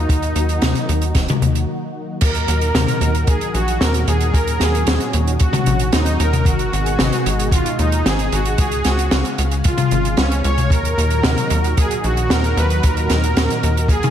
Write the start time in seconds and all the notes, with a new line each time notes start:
Already playing: D#3 F#3 A#3 D#4 F#4
0.09 D#2, kick, closed hi-hat
0.22 closed hi-hat
0.35 D#2, closed hi-hat
0.49 closed hi-hat
0.62 D#2, snare, closed hi-hat, mid tom
0.75 closed hi-hat
0.89 D#2, closed hi-hat
1.01 closed hi-hat
1.15 D#1, kick, snare, closed hi-hat
1.28 closed hi-hat, mid tom
1.42 D#2, closed hi-hat
1.55 closed hi-hat
2.21 D#2 A#2 D#3 F#3 D#4 F#4 A#4, kick, closed hi-hat, crash
2.34 closed hi-hat
2.48 D#2, closed hi-hat
2.61 closed hi-hat
2.74 D#2, snare, closed hi-hat, mid tom
2.88 closed hi-hat
3.01 D#2, closed hi-hat
3.15 closed hi-hat
3.27 D#2 G#4, kick, closed hi-hat
3.41 closed hi-hat
3.54 A#1 F#4, closed hi-hat
3.68 closed hi-hat
3.81 D#2 A#4, snare, closed hi-hat
3.94 closed hi-hat
4.07 D#2 G#4, closed hi-hat
4.20 closed hi-hat
4.34 D#2 C#4 A#4, kick, closed hi-hat
4.47 closed hi-hat
4.60 D#2 G#4, snare, closed hi-hat
4.75 closed hi-hat
4.87 D#2, snare, closed hi-hat
5.00 closed hi-hat
5.13 D#2, closed hi-hat
5.27 closed hi-hat
5.39 D#2 F#4, kick, closed hi-hat
5.53 closed hi-hat, mid tom
5.66 A#1, closed hi-hat
5.79 closed hi-hat
5.92 D#2 D#4, snare, closed hi-hat
6.06 closed hi-hat
6.20 D#2 A#4, closed hi-hat
6.33 closed hi-hat, mid tom
6.45 G#1 B2 D#3 G#3 D#4 F#4 G#4, kick, closed hi-hat
6.59 closed hi-hat
6.73 G#1, closed hi-hat
6.86 closed hi-hat
6.99 G#1, snare, closed hi-hat, mid tom
7.12 closed hi-hat
7.26 G#1, closed hi-hat
7.39 closed hi-hat
7.51 G#1 F4, kick, closed hi-hat
7.66 closed hi-hat
7.79 D#2 D#4, closed hi-hat
7.92 closed hi-hat
8.06 G#1 G#4, snare, closed hi-hat
8.19 closed hi-hat
8.32 G#1 F#4, closed hi-hat
8.45 closed hi-hat
8.58 C#2 C#3 G#3 G#4 F5, kick, closed hi-hat
8.71 closed hi-hat
8.84 C#2 F#4, snare, closed hi-hat
8.99 closed hi-hat
9.11 C#2, snare, closed hi-hat
9.25 closed hi-hat
9.38 C#2, closed hi-hat
9.51 closed hi-hat
9.64 C#2 F4, kick, closed hi-hat
9.78 closed hi-hat, mid tom
9.91 G#1, closed hi-hat
10.05 closed hi-hat
10.17 C#2 C#4, snare, closed hi-hat
10.32 closed hi-hat
10.44 C#2 C#5, closed hi-hat
10.57 closed hi-hat, mid tom
10.70 D#2 A#2 D#3 F#3 D#4 F#4 A#4, kick, closed hi-hat
10.85 closed hi-hat
10.97 D#2, closed hi-hat
11.10 closed hi-hat
11.23 D#2, snare, closed hi-hat, mid tom
11.37 closed hi-hat
11.50 D#2, closed hi-hat
11.64 closed hi-hat
11.77 D#2 G#4, kick, closed hi-hat
11.91 closed hi-hat
12.04 A#1 F#4, closed hi-hat
12.17 closed hi-hat
12.30 D#2 A#4, snare, closed hi-hat
12.44 closed hi-hat
12.57 D#2 B4, closed hi-hat
12.70 closed hi-hat
12.83 D#2 A#4, kick, closed hi-hat
12.97 closed hi-hat
13.09 D#2, snare, closed hi-hat
13.23 closed hi-hat
13.37 D#2, snare, closed hi-hat
13.50 closed hi-hat
13.63 D#2, closed hi-hat
13.77 closed hi-hat
13.88 D#2 G#4, kick, closed hi-hat
14.03 closed hi-hat, mid tom